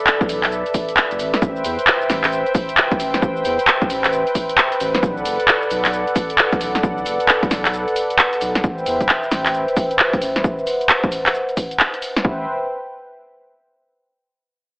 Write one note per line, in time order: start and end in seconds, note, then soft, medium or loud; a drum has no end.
0.00 1.39 A4 medium
0.00 1.38 B4 medium
0.00 1.38 D5 medium
0.00 4.99 E5 medium
0.07 clap loud
0.07 cabasa soft
0.21 kick loud
0.21 cabasa soft
0.29 0.63 B1 loud
0.29 open hi-hat loud
0.29 cabasa medium
0.43 clap medium
0.43 open hi-hat medium
0.43 cabasa soft
0.52 cabasa soft
0.66 closed hi-hat soft
0.66 cabasa soft
0.74 kick medium
0.74 open hi-hat loud
0.74 cabasa medium
0.89 closed hi-hat medium
0.89 cabasa soft
0.97 clap loud
0.97 cabasa soft
1.11 1.21 F#1 medium
1.11 closed hi-hat medium
1.11 cabasa soft
1.19 1.32 A1 medium
1.19 open hi-hat loud
1.19 cabasa medium
1.34 snare medium
1.34 closed hi-hat medium
1.34 cabasa soft
1.42 1.62 A1 loud
1.42 8.60 B4 medium
1.42 4.99 C5 medium
1.42 4.99 G5 medium
1.42 kick loud
1.42 cabasa soft
1.56 cabasa soft
1.65 1.77 E2 medium
1.65 open hi-hat loud
1.65 cabasa medium
1.79 closed hi-hat medium
1.79 cabasa soft
1.87 clap loud
1.87 cabasa soft
2.01 cabasa soft
2.10 2.44 A1 loud
2.10 snare medium
2.10 open hi-hat loud
2.10 cabasa medium
2.24 clap medium
2.24 open hi-hat medium
2.24 cabasa soft
2.32 cabasa soft
2.46 closed hi-hat soft
2.46 cabasa soft
2.55 kick loud
2.55 open hi-hat loud
2.55 cabasa medium
2.69 closed hi-hat medium
2.69 cabasa soft
2.77 clap loud
2.77 cabasa soft
2.91 kick loud
2.91 closed hi-hat medium
2.91 cabasa soft
3.00 3.20 A1 loud
3.00 open hi-hat loud
3.00 cabasa medium
3.14 snare medium
3.14 closed hi-hat medium
3.14 cabasa soft
3.22 3.43 A1 loud
3.22 kick loud
3.22 cabasa soft
3.37 cabasa soft
3.45 3.57 E2 medium
3.45 open hi-hat loud
3.45 cabasa medium
3.59 closed hi-hat medium
3.59 cabasa soft
3.67 clap loud
3.67 cabasa soft
3.82 kick loud
3.82 cabasa soft
3.90 4.24 A1 loud
3.90 open hi-hat loud
3.90 cabasa medium
4.04 clap medium
4.04 open hi-hat medium
4.04 cabasa soft
4.13 cabasa soft
4.27 closed hi-hat soft
4.27 cabasa soft
4.35 kick medium
4.35 open hi-hat loud
4.35 cabasa medium
4.49 closed hi-hat medium
4.49 cabasa soft
4.58 clap loud
4.58 cabasa soft
4.72 closed hi-hat medium
4.72 cabasa soft
4.80 5.01 A1 loud
4.80 open hi-hat loud
4.80 cabasa medium
4.95 snare medium
4.95 closed hi-hat medium
4.95 cabasa soft
5.03 5.23 B1 loud
5.03 8.60 A4 medium
5.03 8.60 D5 medium
5.03 8.60 F#5 medium
5.03 kick loud
5.03 cabasa soft
5.17 cabasa soft
5.25 5.38 F#1 medium
5.25 open hi-hat loud
5.25 cabasa medium
5.40 closed hi-hat medium
5.40 cabasa soft
5.48 clap loud
5.48 cabasa soft
5.62 cabasa soft
5.71 6.05 B1 loud
5.71 open hi-hat loud
5.71 cabasa medium
5.85 clap medium
5.85 open hi-hat medium
5.85 cabasa soft
5.93 cabasa soft
6.07 closed hi-hat soft
6.07 cabasa soft
6.16 kick loud
6.16 open hi-hat loud
6.16 cabasa medium
6.30 closed hi-hat medium
6.30 cabasa soft
6.38 clap loud
6.38 cabasa soft
6.52 kick loud
6.52 closed hi-hat medium
6.52 cabasa soft
6.61 6.81 B1 loud
6.61 open hi-hat loud
6.61 cabasa medium
6.75 snare medium
6.75 closed hi-hat medium
6.75 cabasa soft
6.83 7.04 B1 loud
6.83 kick loud
6.83 cabasa soft
6.98 cabasa soft
7.06 7.18 F#1 medium
7.06 open hi-hat loud
7.06 cabasa medium
7.20 closed hi-hat medium
7.20 cabasa soft
7.29 clap loud
7.29 cabasa soft
7.43 kick loud
7.43 closed hi-hat soft
7.43 cabasa soft
7.51 7.85 B1 loud
7.51 snare medium
7.51 open hi-hat loud
7.51 cabasa medium
7.65 clap medium
7.65 open hi-hat medium
7.65 cabasa soft
7.74 cabasa soft
7.88 closed hi-hat soft
7.88 cabasa soft
7.96 open hi-hat loud
7.96 cabasa medium
8.10 closed hi-hat medium
8.10 cabasa soft
8.19 clap loud
8.19 cabasa soft
8.33 closed hi-hat medium
8.33 cabasa soft
8.41 8.62 B1 loud
8.41 open hi-hat loud
8.41 cabasa medium
8.55 snare medium
8.55 closed hi-hat medium
8.55 cabasa soft
8.64 8.84 A1 loud
8.64 12.21 B4 medium
8.64 12.21 C5 medium
8.64 12.21 E5 medium
8.64 10.43 G5 medium
8.64 kick loud
8.64 cabasa soft
8.78 cabasa soft
8.86 8.99 E2 medium
8.86 open hi-hat loud
8.86 cabasa medium
9.01 kick medium
9.01 closed hi-hat medium
9.01 cabasa soft
9.09 clap loud
9.09 cabasa soft
9.23 cabasa soft
9.31 9.65 A1 loud
9.31 snare medium
9.31 open hi-hat loud
9.31 cabasa medium
9.46 clap medium
9.46 open hi-hat medium
9.46 cabasa soft
9.54 cabasa soft
9.68 closed hi-hat soft
9.68 cabasa soft
9.77 kick loud
9.77 open hi-hat loud
9.77 cabasa medium
9.91 closed hi-hat medium
9.91 cabasa soft
9.99 clap loud
9.99 cabasa soft
10.13 kick loud
10.13 closed hi-hat medium
10.13 cabasa soft
10.22 10.42 A1 loud
10.22 open hi-hat loud
10.22 cabasa medium
10.36 snare medium
10.36 closed hi-hat medium
10.36 cabasa soft
10.44 12.23 F#5 medium
10.44 kick loud
10.44 cabasa soft
10.59 cabasa soft
10.67 open hi-hat loud
10.67 cabasa medium
10.81 closed hi-hat medium
10.81 cabasa soft
10.89 clap loud
10.89 cabasa soft
11.04 kick loud
11.04 cabasa soft
11.12 open hi-hat loud
11.12 cabasa medium
11.26 clap medium
11.26 open hi-hat medium
11.26 cabasa soft
11.35 cabasa soft
11.49 closed hi-hat soft
11.49 cabasa soft
11.57 kick medium
11.57 open hi-hat loud
11.57 cabasa medium
11.71 closed hi-hat medium
11.71 cabasa soft
11.80 clap loud
11.80 cabasa soft
11.94 closed hi-hat medium
11.94 cabasa soft
12.02 open hi-hat loud
12.02 cabasa medium
12.16 snare medium
12.16 closed hi-hat medium
12.16 cabasa soft
12.25 12.46 A1 loud
12.25 12.46 B4 medium
12.25 12.46 C5 medium
12.25 12.46 E5 medium
12.25 12.46 G5 medium
12.25 kick loud